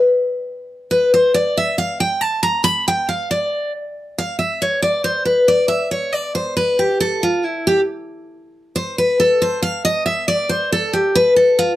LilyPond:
\new Staff \with { instrumentName = "Steel-string acoustic guitar" } { \time 3/4 \key g \mixolydian \tempo 4 = 138 r2 b'8 c''8 | d''8 e''8 f''8 g''8 a''8 bes''8 | b''8 g''8 f''8 d''4 r8 | r8 f''8 e''8 cis''8 d''8 c''8 |
b'8 d''8 e''8 cis''8 d''8 c''8 | b'8 g'8 a'8 f'8 e'8 g'8 | r2 c''8 b'8 | a'8 c''8 f''8 ees''8 e''8 d''8 |
c''8 a'8 g'8 b'8 a'8 f'8 | }